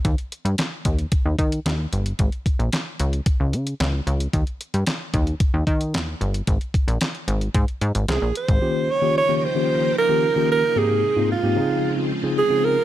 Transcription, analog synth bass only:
\new Staff \with { instrumentName = "Analog synth bass" } { \clef bass \time 4/4 \key ees \mixolydian \tempo 4 = 112 ees,16 r8 g,16 r8 ees,8 r16 ees,16 ees8 ees,8 g,,8 | aes,,16 r8 bes,,16 r8 des,8 r16 des,16 des8 des,8 des,8 | ees,16 r8 g,16 r8 ees,8 r16 ees,16 ees8 ees,8 g,,8 | aes,,16 r8 bes,,16 r8 aes,,8 aes,16 r16 aes,16 aes,,16 c,16 bes,,16 r16 aes,,16 |
r1 | r1 | }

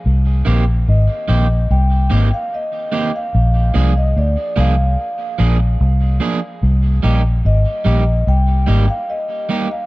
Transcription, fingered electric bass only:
\new Staff \with { instrumentName = "Fingered electric bass" } { \clef bass \time 4/4 \key c \minor \tempo 4 = 73 c,8 bes,,8 aes,,16 r16 bes,,8 c,8 aes,,16 r4 r16 | bes,,8 c,8 d,16 r16 c,8 r8 bes,,8 c,8 r8 | c,8 bes,,8 aes,,16 r16 bes,,8 c,8 aes,,16 r4 r16 | }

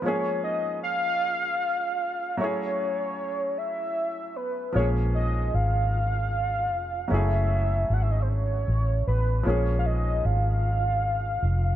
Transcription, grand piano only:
\new Staff \with { instrumentName = "Grand piano" } { \time 6/8 \key bes \minor \tempo 4. = 51 <f aes bes des' aes'>2. | <ges a des' fes' aes'>2. | <f aes bes des' aes'>2. | <ges aes a des' fes' aes'>2. |
<f aes bes des' aes'>2. | }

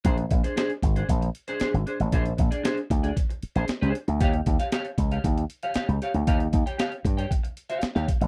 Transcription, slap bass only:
\new Staff \with { instrumentName = "Slap bass" } { \clef bass \time 4/4 \key bes \mixolydian \tempo 4 = 116 bes,,8 bes,,16 r8. aes,,8 bes,,8 r8. aes,,16 r16 a,,16 | bes,,8 bes,,16 r8. d,8 r8. bes,,16 r16 des,16 r16 d,16 | ees,8 ees,16 r8. des,8 ees,8 r8. des,16 r16 d,16 | ees,8 ees,16 r8. g,8 r4 r16 ees,16 r16 a,,16 | }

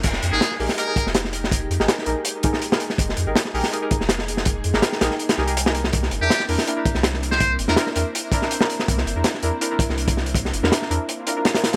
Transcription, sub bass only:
\new Staff \with { instrumentName = "Sub bass" } { \clef bass \time 4/4 \key f \dorian \tempo 4 = 163 f,,8 f,16 aes,,16 r8 bes,,16 r4 f,,4~ f,,16~ | f,,8 f,16 aes,,16 r8 bes,,16 r2 r16 | f,,8 f,16 aes,,16 r8 bes,,16 r4 f,,4~ f,,16~ | f,,8 f,16 aes,,16 r8 bes,,16 r8. c,4. |
c,8 g,,16 e,16 r8 e,16 r4 c,4~ c,16~ | c,8 g,,16 e,16 r8 e,16 r2 r16 | c,8 g,,16 e,16 r8 e,16 r4 c,4~ c,16~ | c,8 g,,16 e,16 r8 e,16 r2 r16 | }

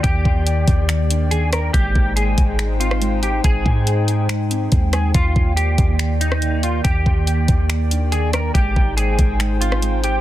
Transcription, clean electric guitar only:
\new Staff \with { instrumentName = "Clean electric guitar" } { \time 4/4 \key ees \major \tempo 4 = 141 g'2. aes'8 bes'8 | g'4 aes'4. f'4 g'8 | aes'2 r4. aes'8 | f'4 g'4. ees'4 f'8 |
g'2. aes'8 bes'8 | g'4 aes'4. f'4 g'8 | }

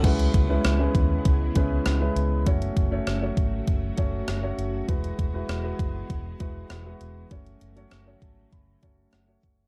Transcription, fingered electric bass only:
\new Staff \with { instrumentName = "Fingered electric bass" } { \clef bass \time 4/4 \key fis \minor \tempo 4 = 99 cis,8 cis,8 cis,8 dis,8 cis,8 cis,8 cis,8 cis,8 | fis,,8 fis,,8 fis,,8 gis,,8 fis,,8 fis,,8 fis,,8 fis,,8 | e,,8 e,,8 e,,8 fis,,8 e,,8 e,,8 e,,8 e,,8 | fis,,8 fis,,8 fis,,8 gis,,8 fis,,8 fis,,8 fis,,8 fis,,8 | }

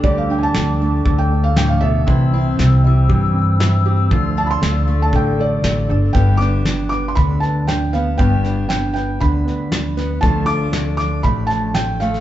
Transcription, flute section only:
\new Staff \with { instrumentName = "Flute section" } { \time 4/4 \key g \mixolydian \tempo 4 = 118 << { d'''1 | e'''1~ | e'''1 | r1 |
r1 | r1 | } \\ { <a' a''>1 | <c'' g''>1 | <d'' f''>1 | r1 |
r1 | r1 | } >> }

